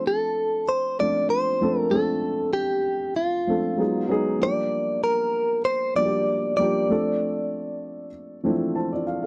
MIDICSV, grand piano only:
0, 0, Header, 1, 2, 480
1, 0, Start_track
1, 0, Key_signature, -1, "minor"
1, 0, Tempo, 620476
1, 1492, Time_signature, 4, 2, 24, 8
1, 7167, End_track
2, 0, Start_track
2, 0, Title_t, "Grand piano"
2, 0, Program_c, 0, 0
2, 0, Control_c, 0, 64, 127
2, 0, Note_on_c, 0, 53, 64
2, 0, Note_on_c, 0, 57, 57
2, 0, Note_on_c, 0, 60, 61
2, 0, Note_on_c, 0, 62, 56
2, 0, Note_on_c, 0, 69, 72
2, 477, Note_off_c, 0, 53, 0
2, 480, Note_off_c, 0, 57, 0
2, 482, Note_off_c, 0, 60, 0
2, 486, Note_off_c, 0, 62, 0
2, 488, Note_off_c, 0, 69, 0
2, 769, Note_on_c, 0, 53, 55
2, 776, Note_on_c, 0, 57, 48
2, 779, Note_on_c, 0, 60, 46
2, 784, Note_on_c, 0, 62, 53
2, 789, Note_on_c, 0, 65, 59
2, 1225, Note_off_c, 0, 53, 0
2, 1228, Note_off_c, 0, 57, 0
2, 1230, Note_off_c, 0, 60, 0
2, 1232, Note_off_c, 0, 62, 0
2, 1235, Note_off_c, 0, 65, 0
2, 1243, Note_on_c, 0, 53, 64
2, 1251, Note_on_c, 0, 57, 57
2, 1254, Note_on_c, 0, 60, 59
2, 1259, Note_on_c, 0, 62, 56
2, 1263, Note_on_c, 0, 69, 73
2, 1473, Note_off_c, 0, 53, 0
2, 1474, Note_off_c, 0, 57, 0
2, 1480, Note_off_c, 0, 60, 0
2, 1483, Note_off_c, 0, 62, 0
2, 1485, Note_off_c, 0, 69, 0
2, 1485, Note_on_c, 0, 53, 58
2, 1486, Note_on_c, 0, 57, 62
2, 1493, Note_on_c, 0, 60, 59
2, 1499, Note_on_c, 0, 62, 57
2, 1504, Note_on_c, 0, 69, 73
2, 2397, Note_off_c, 0, 53, 0
2, 2397, Note_off_c, 0, 57, 0
2, 2401, Note_off_c, 0, 60, 0
2, 2404, Note_off_c, 0, 62, 0
2, 2407, Note_off_c, 0, 69, 0
2, 2685, Note_on_c, 0, 53, 60
2, 2693, Note_on_c, 0, 57, 48
2, 2696, Note_on_c, 0, 60, 50
2, 2704, Note_on_c, 0, 62, 49
2, 2708, Note_on_c, 0, 69, 62
2, 2921, Note_on_c, 0, 54, 65
2, 2925, Note_on_c, 0, 56, 56
2, 2929, Note_off_c, 0, 53, 0
2, 2931, Note_on_c, 0, 59, 58
2, 2933, Note_off_c, 0, 57, 0
2, 2934, Note_off_c, 0, 60, 0
2, 2935, Note_on_c, 0, 63, 53
2, 2939, Note_off_c, 0, 62, 0
2, 2941, Note_off_c, 0, 69, 0
2, 2941, Note_on_c, 0, 68, 67
2, 2943, Control_c, 0, 64, 0
2, 3081, Control_c, 0, 64, 127
2, 3150, Note_off_c, 0, 54, 0
2, 3156, Note_off_c, 0, 56, 0
2, 3159, Note_off_c, 0, 59, 0
2, 3161, Note_off_c, 0, 63, 0
2, 3162, Note_on_c, 0, 54, 81
2, 3164, Note_off_c, 0, 68, 0
2, 3168, Note_on_c, 0, 56, 71
2, 3173, Note_on_c, 0, 59, 70
2, 3179, Note_on_c, 0, 63, 70
2, 3183, Note_on_c, 0, 68, 90
2, 3395, Note_off_c, 0, 54, 0
2, 3398, Note_off_c, 0, 56, 0
2, 3401, Note_off_c, 0, 59, 0
2, 3401, Note_on_c, 0, 53, 59
2, 3403, Note_off_c, 0, 63, 0
2, 3405, Note_off_c, 0, 68, 0
2, 3405, Note_on_c, 0, 55, 56
2, 3412, Note_on_c, 0, 58, 57
2, 3417, Note_on_c, 0, 62, 54
2, 3422, Note_on_c, 0, 67, 70
2, 3423, Control_c, 0, 64, 0
2, 3537, Control_c, 0, 64, 127
2, 4316, Note_off_c, 0, 53, 0
2, 4317, Note_off_c, 0, 55, 0
2, 4321, Note_off_c, 0, 58, 0
2, 4323, Note_off_c, 0, 62, 0
2, 4326, Note_off_c, 0, 67, 0
2, 4605, Note_on_c, 0, 53, 52
2, 4611, Note_on_c, 0, 55, 51
2, 4618, Note_on_c, 0, 58, 48
2, 4623, Note_on_c, 0, 62, 50
2, 4626, Note_on_c, 0, 66, 46
2, 4675, Note_off_c, 0, 66, 0
2, 4678, Note_on_c, 0, 67, 64
2, 5064, Note_off_c, 0, 53, 0
2, 5067, Note_off_c, 0, 55, 0
2, 5070, Note_off_c, 0, 58, 0
2, 5073, Note_off_c, 0, 62, 0
2, 5089, Note_on_c, 0, 53, 64
2, 5094, Note_on_c, 0, 55, 63
2, 5098, Note_off_c, 0, 67, 0
2, 5099, Note_on_c, 0, 58, 57
2, 5102, Note_on_c, 0, 62, 59
2, 5110, Note_on_c, 0, 67, 72
2, 5319, Note_off_c, 0, 53, 0
2, 5321, Note_off_c, 0, 55, 0
2, 5324, Note_off_c, 0, 58, 0
2, 5325, Note_off_c, 0, 62, 0
2, 5329, Note_off_c, 0, 67, 0
2, 5331, Note_on_c, 0, 53, 64
2, 5334, Note_on_c, 0, 57, 58
2, 5339, Note_on_c, 0, 60, 57
2, 5345, Control_c, 0, 64, 0
2, 5347, Note_on_c, 0, 62, 56
2, 5349, Note_on_c, 0, 69, 73
2, 5491, Control_c, 0, 64, 127
2, 6241, Note_off_c, 0, 53, 0
2, 6242, Note_off_c, 0, 57, 0
2, 6245, Note_off_c, 0, 60, 0
2, 6249, Note_off_c, 0, 62, 0
2, 6250, Note_off_c, 0, 69, 0
2, 6525, Note_on_c, 0, 52, 54
2, 6528, Note_on_c, 0, 57, 62
2, 6535, Note_on_c, 0, 60, 62
2, 6541, Note_on_c, 0, 62, 59
2, 6546, Note_on_c, 0, 64, 73
2, 6577, Note_on_c, 0, 53, 67
2, 6584, Note_off_c, 0, 52, 0
2, 6765, Note_off_c, 0, 64, 0
2, 6772, Note_on_c, 0, 72, 53
2, 6773, Note_on_c, 0, 81, 60
2, 6777, Note_on_c, 0, 64, 42
2, 6897, Note_off_c, 0, 72, 0
2, 6899, Note_off_c, 0, 64, 0
2, 6906, Note_on_c, 0, 74, 63
2, 6912, Note_on_c, 0, 65, 49
2, 6985, Note_off_c, 0, 57, 0
2, 6988, Note_off_c, 0, 60, 0
2, 6992, Note_off_c, 0, 62, 0
2, 6997, Note_off_c, 0, 81, 0
2, 7009, Note_off_c, 0, 53, 0
2, 7016, Note_on_c, 0, 77, 59
2, 7129, Note_off_c, 0, 77, 0
2, 7133, Note_off_c, 0, 74, 0
2, 7136, Note_off_c, 0, 65, 0
2, 7141, Note_on_c, 0, 77, 52
2, 7167, Note_off_c, 0, 77, 0
2, 7167, End_track
0, 0, End_of_file